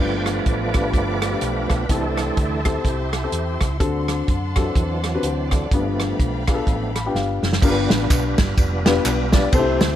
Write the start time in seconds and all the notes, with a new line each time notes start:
Already playing: F3 A3 B3 B4 F5 G5 B5
0.00 G1 G2 D4 F4 G4 B4 D5 G5 D6
0.26 cross-stick, closed hi-hat
0.46 A1, kick, closed hi-hat
0.74 D4 F4 G4 B4, kick, cross-stick, closed hi-hat
0.93 G1, kick, closed hi-hat
1.22 cross-stick, closed hi-hat
1.31 D4 F4 G4 B4
1.41 B1 D4 F4 B4, closed hi-hat
1.70 B1, kick, cross-stick, closed hi-hat
1.88 C2 C3 E3 A3 C4 D4 E4 G4 A4 E5 A5 C6, kick, closed hi-hat
2.17 cross-stick, closed hi-hat
2.37 D2, kick, closed hi-hat
2.65 C4 E4 G4 A4, kick, cross-stick, closed hi-hat
2.84 C2 E4 G4, kick, closed hi-hat
3.13 cross-stick, closed hi-hat
3.23 C4 E4 G4 A4
3.32 E2, closed hi-hat
3.61 C#2, kick, cross-stick, closed hi-hat
3.80 D2 D3 C4 D4 F#4 A4 D5 F#5 A5, kick, closed hi-hat
4.08 cross-stick, closed hi-hat
4.28 F#2, kick, closed hi-hat
4.56 E3 F#3 C4 D4 F#4 A4, kick, cross-stick, closed hi-hat
4.75 E2, kick, closed hi-hat
5.04 cross-stick, closed hi-hat
5.14 C4 D4 F#4 B4
5.23 D2 F#4 C5, closed hi-hat
5.51 A4 D5, kick, cross-stick, closed hi-hat
5.71 G1 G2 F3 A3 B3 D4 F4 G4 F5 G5 B5, kick, closed hi-hat
6.00 cross-stick, closed hi-hat
6.19 B1, kick, closed hi-hat
6.47 B3 D4 F4 G#4, kick, cross-stick, closed hi-hat
6.54 A4
6.66 A1 F3 A3 B3, kick, closed hi-hat
6.96 B5, cross-stick, closed hi-hat
7.06 B3 D4 F4 G4 G5
7.14 G1 F5, snare
7.42 F#1, snare
7.53 snare
7.62 G1 G2 G3 B3 D4 F4 G4 A#4 B4, kick, crash, tambourine
7.69 B4
7.90 A1, snare, ride bell, tambourine
8.10 B1, kick, clap, ride bell, tambourine
8.38 G1, kick, snare, ride bell, tambourine
8.57 F1, kick, ride bell, tambourine
8.85 B3 D4 F4 G4 B4, snare, ride bell, tambourine
9.05 B1, clap, ride bell, tambourine
9.32 B3 D4 F4 G4 D5, kick, snare, ride bell, tambourine
9.52 C2 C3 A3 C4 D4 E4 G4 A4 C5, kick, ride bell, tambourine
9.59 E4
9.80 D2, snare, ride bell, tambourine